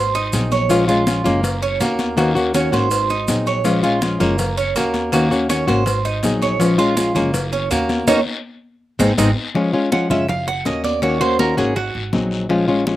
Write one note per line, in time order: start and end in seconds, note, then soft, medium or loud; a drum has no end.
0.00 0.29 G#1 medium
0.00 0.14 C5 medium
0.15 0.51 D#4 medium
0.15 high conga soft
0.15 maracas soft
0.32 1.20 A#1 loud
0.32 0.69 F#3 soft
0.32 0.69 C4 medium
0.32 0.70 D#4 soft
0.32 0.70 G#4 soft
0.32 cowbell medium
0.32 high conga medium
0.32 short guiro medium
0.32 maracas medium
0.51 0.88 C#5 medium
0.51 high conga medium
0.51 short guiro medium
0.51 maracas soft
0.69 0.87 F3 medium
0.69 0.88 G#3 medium
0.69 0.87 C#4 medium
0.69 0.87 F4 medium
0.69 cowbell loud
0.69 long guiro medium
0.69 maracas medium
0.88 1.06 G#3 medium
0.88 1.06 C#4 medium
0.88 1.06 F4 medium
0.88 1.24 F4 medium
0.88 high conga soft
0.88 maracas soft
1.06 1.24 F3 medium
1.06 1.25 G#3 medium
1.06 1.24 C#4 medium
1.06 1.23 F4 medium
1.06 cowbell medium
1.06 high conga loud
1.06 short guiro medium
1.06 maracas medium
1.24 1.77 F#1 loud
1.24 1.43 G#3 medium
1.24 1.61 A#3 medium
1.24 1.43 C#4 medium
1.24 1.43 F4 medium
1.24 high conga soft
1.24 low conga medium
1.24 short guiro medium
1.24 maracas soft
1.43 muted nylon-string guitar stroke medium
1.43 cowbell loud
1.43 high conga soft
1.43 long guiro medium
1.43 maracas medium
1.62 1.80 C#4 medium
1.62 high conga soft
1.62 maracas soft
1.80 2.67 D#2 medium
1.80 2.16 A#3 medium
1.80 2.17 A#3 medium
1.80 2.16 C#4 medium
1.80 2.17 F#4 medium
1.80 cowbell medium
1.80 high conga soft
1.80 short guiro medium
1.80 maracas medium
1.99 cowbell medium
1.99 high conga medium
1.99 short guiro medium
1.99 maracas soft
2.17 2.35 D#3 medium
2.17 2.35 A#3 medium
2.17 2.54 A#3 medium
2.17 2.35 C#4 medium
2.17 2.34 F#4 medium
2.17 cowbell loud
2.17 high conga soft
2.17 long guiro medium
2.17 maracas medium
2.35 2.53 A#3 medium
2.35 2.54 C#4 medium
2.35 2.53 F#4 medium
2.35 high conga soft
2.35 maracas soft
2.54 2.72 D#3 medium
2.54 2.72 A#3 medium
2.54 2.73 C#4 medium
2.54 2.72 C#4 medium
2.54 2.71 F#4 medium
2.54 cowbell medium
2.54 high conga loud
2.54 short guiro medium
2.54 maracas medium
2.72 3.24 G#1 medium
2.72 2.91 A#3 medium
2.72 2.91 C#4 medium
2.72 2.90 F#4 medium
2.72 3.09 C5 medium
2.72 cowbell medium
2.72 high conga soft
2.72 short guiro medium
2.72 maracas soft
2.91 muted nylon-string guitar stroke medium
2.91 cowbell loud
2.91 high conga soft
2.91 long guiro medium
2.91 maracas medium
3.09 3.46 D#4 medium
3.09 high conga soft
3.09 maracas soft
3.28 4.15 A#1 medium
3.28 3.64 F#3 soft
3.28 3.65 C4 soft
3.28 3.65 D#4 medium
3.28 3.65 G#4 medium
3.28 cowbell medium
3.28 high conga medium
3.28 short guiro medium
3.28 maracas medium
3.46 3.83 C#5 medium
3.46 short guiro medium
3.46 maracas soft
3.64 3.83 F3 medium
3.64 3.83 G#3 medium
3.64 3.83 C#4 medium
3.64 3.82 F4 medium
3.64 cowbell loud
3.64 high conga soft
3.64 long guiro medium
3.64 maracas medium
3.83 4.01 G#3 medium
3.83 4.02 C#4 medium
3.83 4.01 F4 medium
3.83 4.20 F4 medium
3.83 high conga soft
3.83 maracas soft
4.02 4.20 F3 medium
4.02 4.20 G#3 medium
4.02 4.20 C#4 medium
4.02 4.19 F4 medium
4.02 cowbell medium
4.02 high conga loud
4.02 short guiro medium
4.02 maracas medium
4.20 4.72 F#1 loud
4.20 4.38 G#3 medium
4.20 4.56 A#3 medium
4.20 4.38 C#4 medium
4.20 4.38 F4 medium
4.20 high conga soft
4.20 low conga medium
4.20 short guiro medium
4.20 maracas soft
4.39 muted nylon-string guitar stroke medium
4.39 cowbell loud
4.39 high conga soft
4.39 low conga medium
4.39 long guiro medium
4.39 maracas medium
4.58 4.75 C#4 medium
4.58 high conga soft
4.58 maracas soft
4.76 5.62 D#2 medium
4.76 5.12 A#3 medium
4.76 5.12 A#3 soft
4.76 5.13 C#4 medium
4.76 5.13 F#4 soft
4.76 cowbell medium
4.76 high conga soft
4.76 short guiro medium
4.76 maracas medium
4.94 cowbell medium
4.94 high conga medium
4.94 short guiro medium
4.94 maracas soft
5.12 5.30 D#3 medium
5.12 5.49 A#3 medium
5.12 5.31 A#3 medium
5.12 5.31 C#4 medium
5.12 5.30 F#4 medium
5.12 cowbell loud
5.12 high conga soft
5.12 long guiro medium
5.12 maracas medium
5.31 5.49 A#3 medium
5.31 5.49 C#4 medium
5.31 5.49 F#4 medium
5.31 high conga soft
5.31 maracas soft
5.49 5.67 D#3 soft
5.49 5.67 A#3 medium
5.49 5.68 C#4 medium
5.49 5.67 C#4 medium
5.49 5.66 F#4 medium
5.49 cowbell medium
5.49 high conga loud
5.49 short guiro medium
5.49 maracas medium
5.67 6.20 G#1 loud
5.67 5.86 A#3 medium
5.67 5.86 C#4 medium
5.67 5.86 F#4 medium
5.67 6.04 C5 medium
5.67 cowbell medium
5.67 high conga soft
5.67 short guiro medium
5.67 maracas soft
5.86 muted nylon-string guitar stroke medium
5.86 cowbell loud
5.86 high conga soft
5.86 long guiro medium
5.86 maracas medium
6.05 6.41 D#4 medium
6.05 high conga soft
6.05 maracas soft
6.23 7.10 A#1 medium
6.23 6.59 F#3 soft
6.23 6.60 C4 medium
6.23 6.60 D#4 medium
6.23 6.60 G#4 medium
6.23 cowbell medium
6.23 high conga medium
6.23 short guiro medium
6.23 maracas medium
6.42 6.78 C#5 medium
6.42 high conga medium
6.42 short guiro medium
6.42 maracas soft
6.60 6.78 F3 medium
6.60 6.78 G#3 medium
6.60 6.78 C#4 medium
6.60 6.77 F4 medium
6.60 cowbell loud
6.60 long guiro medium
6.60 maracas medium
6.78 6.96 G#3 medium
6.78 6.97 C#4 medium
6.78 6.96 F4 medium
6.78 7.14 F4 medium
6.78 high conga soft
6.78 maracas soft
6.96 7.15 F3 medium
6.96 7.15 G#3 medium
6.96 7.14 C#4 medium
6.96 7.14 F4 medium
6.96 cowbell medium
6.96 high conga loud
6.96 short guiro medium
6.96 maracas medium
7.15 7.67 F#1 medium
7.15 7.34 G#3 medium
7.15 7.51 A#3 medium
7.15 7.33 C#4 medium
7.15 7.33 F4 medium
7.15 high conga soft
7.15 low conga medium
7.15 short guiro medium
7.15 maracas soft
7.34 muted nylon-string guitar stroke medium
7.34 cowbell loud
7.34 high conga soft
7.34 long guiro medium
7.34 maracas medium
7.53 7.70 C#4 medium
7.53 high conga soft
7.53 maracas soft
7.71 8.05 D#2 loud
7.71 8.07 A#3 medium
7.71 8.06 A#3 soft
7.71 8.06 C#4 medium
7.71 8.08 F#4 medium
7.71 cowbell medium
7.71 high conga soft
7.71 short guiro medium
7.71 maracas medium
7.89 cowbell medium
7.89 high conga medium
7.89 short guiro medium
7.89 maracas soft
8.07 8.21 D#2 loud
8.07 8.19 A#3 loud
8.07 8.19 C#4 loud
8.07 8.19 D#4 loud
8.07 8.20 F#4 medium
8.07 cowbell loud
8.07 high conga medium
8.07 long guiro medium
8.07 maracas medium
8.99 9.14 G#1 loud
8.99 9.11 G#3 loud
8.99 9.12 G#3 medium
8.99 9.11 C4 medium
8.99 9.12 C4 loud
8.99 9.11 D#4 medium
8.99 9.12 D#4 medium
8.99 cowbell loud
8.99 high conga loud
8.99 long guiro medium
8.99 maracas loud
9.18 9.32 G#1 loud
9.18 9.30 G#3 medium
9.18 9.30 C4 medium
9.18 9.30 D#4 medium
9.18 cowbell loud
9.18 high conga loud
9.18 long guiro loud
9.18 maracas loud
9.55 9.73 F3 medium
9.55 9.73 G#3 medium
9.55 9.73 C#4 medium
9.55 9.72 F4 medium
9.55 high bongo medium
9.55 high conga soft
9.55 long guiro medium
9.73 9.91 G#3 medium
9.73 9.92 C#4 medium
9.73 9.91 F4 medium
9.73 high bongo soft
9.73 high conga soft
9.92 10.10 F3 soft
9.92 10.10 G#3 medium
9.92 10.10 C#4 medium
9.92 10.09 F4 medium
9.92 10.10 F#5 medium
9.92 high bongo medium
9.92 high conga medium
9.92 short guiro medium
10.10 10.62 F#1 medium
10.10 10.29 G#3 soft
10.10 10.28 C#4 medium
10.10 10.28 F4 medium
10.10 10.29 E5 medium
10.10 high bongo soft
10.10 high conga soft
10.10 low conga medium
10.10 short guiro medium
10.29 10.47 F5 medium
10.29 muted nylon-string guitar stroke medium
10.29 high bongo medium
10.29 high conga soft
10.29 low conga medium
10.29 long guiro medium
10.47 10.65 F#5 loud
10.47 high bongo soft
10.47 high conga soft
10.65 11.52 D#2 medium
10.65 11.01 A#3 medium
10.65 11.02 C#4 soft
10.65 11.02 F#4 soft
10.65 10.84 D#5 medium
10.65 high bongo soft
10.65 low bongo medium
10.65 high conga soft
10.65 short guiro medium
10.84 11.02 D5 medium
10.84 high conga medium
10.84 short guiro medium
11.02 11.20 D#3 medium
11.02 11.20 A#3 medium
11.02 11.20 C#4 medium
11.02 11.19 F#4 medium
11.02 11.21 C#5 medium
11.02 high bongo medium
11.02 high conga soft
11.02 long guiro medium
11.21 11.38 A#3 medium
11.21 11.39 C#4 medium
11.21 11.39 F#4 medium
11.21 11.39 C5 medium
11.21 high bongo soft
11.21 high conga soft
11.39 11.57 D#3 soft
11.39 11.57 A#3 medium
11.39 11.57 C#4 medium
11.39 11.56 F#4 medium
11.39 11.57 A#4 medium
11.39 high bongo medium
11.39 high conga medium
11.39 short guiro medium
11.57 11.92 G#1 medium
11.57 11.76 A#3 medium
11.57 11.76 C#4 medium
11.57 11.75 F#4 medium
11.57 11.76 G#4 medium
11.57 high bongo soft
11.57 short guiro medium
11.76 12.46 F#4 medium
11.76 muted nylon-string guitar stroke medium
11.76 high bongo medium
11.76 high conga soft
11.76 long guiro medium
11.95 12.12 G#1 medium
11.95 high bongo soft
11.95 high conga soft
12.13 12.96 A#1 medium
12.13 12.49 F#3 soft
12.13 12.49 C4 medium
12.13 12.50 D#4 medium
12.13 12.50 G#4 soft
12.13 high bongo soft
12.13 low bongo medium
12.13 high conga medium
12.13 short guiro medium
12.31 short guiro medium
12.49 12.67 F3 medium
12.49 12.68 G#3 medium
12.49 12.68 C#4 medium
12.49 12.67 F4 medium
12.49 high bongo medium
12.49 high conga soft
12.49 long guiro medium
12.68 12.86 G#3 medium
12.68 12.86 C#4 medium
12.68 12.86 F4 medium
12.68 high bongo soft
12.68 high conga soft
12.86 12.96 F3 soft
12.86 12.96 G#3 medium
12.86 12.96 C#4 medium
12.86 12.96 F4 medium
12.86 high bongo medium
12.86 high conga medium
12.86 short guiro medium